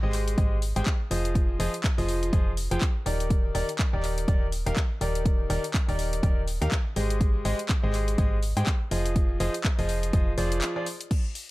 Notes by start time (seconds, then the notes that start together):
0.03 G#1 G#3 G4 G#4 C5 D#5
0.13 clap, open hi-hat
0.28 closed hi-hat
0.38 G#1 G#3 G4 G#4 C5 D#5, kick, closed hi-hat
0.62 open hi-hat
0.76 G#1 G#3 G4 G#4 C5 G5, closed hi-hat
0.86 kick, clap, closed hi-hat
1.11 F1 F3 F4 G#4 C5 D#5, open hi-hat
1.25 closed hi-hat
1.35 kick, closed hi-hat
1.60 F1 F3 F4 G#4 C5 D#5, open hi-hat
1.74 closed hi-hat
1.84 kick, clap, closed hi-hat
1.98 F1 F3 F4 G#4 C5 D#5, open hi-hat
2.09 open hi-hat
2.23 closed hi-hat
2.33 F1 F3 F4 G#4 C5 D#5, kick, closed hi-hat
2.57 open hi-hat
2.71 F1 F3 F4 G#4 C5 G5, closed hi-hat
2.81 kick, clap, closed hi-hat
3.06 D#1 D#3 D#4 G4 A#4 D5, open hi-hat
3.20 closed hi-hat
3.30 kick, closed hi-hat
3.55 D#1 D#3 D#4 G4 A#4 D5, open hi-hat
3.69 closed hi-hat
3.79 kick, clap, closed hi-hat
3.93 D#1 D#3 D#4 G4 A#4 D5
4.03 clap, open hi-hat
4.18 closed hi-hat
4.28 D#1 D#3 D#4 G4 A#4 D5, kick, closed hi-hat
4.52 open hi-hat
4.66 D#1 D#3 D#4 G4 A#4 F5, closed hi-hat
4.76 kick, clap, closed hi-hat
5.01 D#1 D#3 D#4 G4 A#4 D5, open hi-hat
5.15 closed hi-hat
5.26 kick, closed hi-hat
5.50 D#1 D#3 D#4 G4 A#4 D5, open hi-hat
5.64 closed hi-hat
5.74 kick, clap, closed hi-hat
5.88 D#1 D#3 D#4 G4 A#4 D5, open hi-hat
5.99 open hi-hat
6.13 closed hi-hat
6.23 D#1 D#3 D#4 G4 A#4 D5, kick, closed hi-hat
6.48 open hi-hat
6.62 D#2 D#3 D#4 G4 A#4 F5, closed hi-hat
6.72 kick, clap, closed hi-hat
6.96 G#1 G#3 G4 G#4 C5 D#5, open hi-hat
7.10 closed hi-hat
7.21 kick, closed hi-hat
7.45 G#1 G#3 G4 G#4 C5 D#5, open hi-hat
7.59 closed hi-hat
7.69 kick, clap, closed hi-hat
7.83 G#1 G#3 G4 G#4 C5 D#5
7.93 clap, open hi-hat
8.08 closed hi-hat
8.18 G#1 G#3 G4 G#4 C5 D#5, kick, closed hi-hat
8.43 open hi-hat
8.57 G#2 G#3 G4 G#4 C5 G5, closed hi-hat
8.67 kick, clap, closed hi-hat
8.91 F1 F3 F4 G#4 C5 D#5, open hi-hat
9.06 closed hi-hat
9.16 kick, closed hi-hat
9.40 F1 F3 F4 G#4 C5 D#5, open hi-hat
9.54 closed hi-hat
9.64 kick, clap, closed hi-hat
9.79 F1 F3 F4 G#4 C5 D#5, open hi-hat
9.89 open hi-hat
10.03 closed hi-hat
10.13 F1 F3 F4 G#4 C5 D#5, kick, closed hi-hat
10.38 F1 F3 F4 G#4 C5 D5, open hi-hat
10.52 closed hi-hat
10.62 clap, closed hi-hat
10.76 F3 F4 G#4 C5 D5
10.86 open hi-hat
11.01 closed hi-hat
11.11 kick, closed hi-hat, crash
11.35 open hi-hat